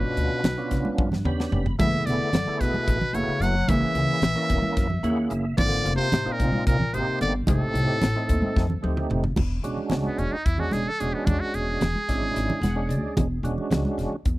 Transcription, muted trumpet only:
0.00 0.94 B4 medium
1.79 2.07 E5 medium
2.06 2.62 D5 medium
2.60 3.16 B4 medium
3.14 3.43 C#5 medium
3.42 3.70 F#5 loud
3.69 5.31 E5 loud
5.58 5.92 D5 loud
5.96 6.33 C5 loud
6.32 6.66 A#4 medium
6.67 6.95 A#4 medium
6.94 7.21 C5 medium
7.21 7.33 D5 medium
7.48 8.80 A4 medium
10.06 10.20 B3 medium
10.19 10.34 C#4 medium
10.33 10.47 D#4 medium
10.45 10.61 E4 medium
10.60 10.74 F#4 medium
10.73 10.90 G#4 medium
10.88 11.01 A4 medium
11.00 11.15 G#4 medium
11.14 11.27 B3 medium
11.25 11.42 D4 medium
11.40 11.56 F#4 medium
11.55 13.17 G#4 medium

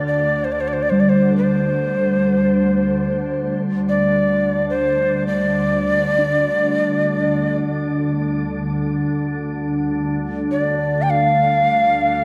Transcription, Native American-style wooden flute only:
0.07 0.46 D5 medium
0.44 0.53 C5 medium
0.52 0.62 D5 medium
0.60 0.69 C5 medium
0.68 0.74 D5 medium
0.73 0.84 C5 medium
0.82 0.91 D5 medium
0.90 1.01 C5 medium
1.00 1.10 D5 medium
1.09 1.36 C5 medium
1.37 3.58 C5 medium
3.89 4.66 D5 medium
4.70 5.26 C5 medium
5.27 7.55 D5 medium
10.51 11.03 D5 medium
11.02 11.11 G5 medium
11.10 12.24 F5 medium

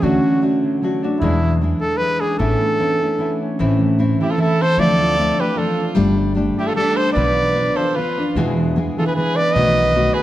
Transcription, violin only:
4.21 4.32 E4 medium
4.30 4.40 F4 medium
4.41 4.63 E4 medium
4.62 4.81 A4 medium
4.81 5.42 A4 medium
5.40 5.61 G4 medium
5.59 5.89 F4 medium
6.59 6.70 E4 medium
6.68 6.77 F4 medium
6.78 6.98 D4 medium
6.96 7.14 A4 medium
7.15 7.77 B4 medium
7.76 7.97 A4 medium
7.95 8.27 F4 medium
8.99 9.07 F4 medium
9.07 9.15 G#4 medium
9.16 9.37 G#4 medium
9.36 9.53 B4 medium
9.53 10.16 B4 medium
10.14 10.23 G#4 medium

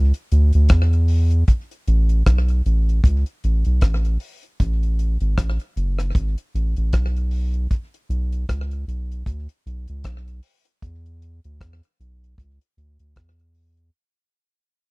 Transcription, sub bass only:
0.00 0.13 C#2 medium
0.32 0.52 D2 loud
0.55 0.69 D2 loud
0.70 1.44 E2 loud
1.88 2.23 A1 loud
2.27 2.62 B1 medium
2.66 3.01 A1 medium
3.04 3.24 C#2 medium
3.44 3.64 A1 medium
3.66 3.81 B1 medium
3.82 4.18 A1 loud
4.60 5.17 A1 loud
5.21 5.36 G#1 medium
5.38 5.59 A1 medium
5.76 6.12 F#1 medium
6.15 6.36 G#1 loud
6.55 6.75 A1 medium
6.77 6.92 A1 medium
6.93 7.67 B1 loud
8.09 8.45 B1 loud
8.49 8.85 C#2 loud
8.88 9.23 B1 medium
9.27 9.48 D2 medium
9.66 9.87 B1 medium
9.89 10.04 C#2 medium
10.05 10.41 B1 medium
10.83 11.40 E2 loud
11.45 11.60 D2 loud
11.61 11.81 E2 loud
12.00 12.35 B1 loud
12.38 12.59 C#2 medium
12.77 12.98 D2 medium
13.00 13.15 D2 medium
13.17 13.90 E2 medium

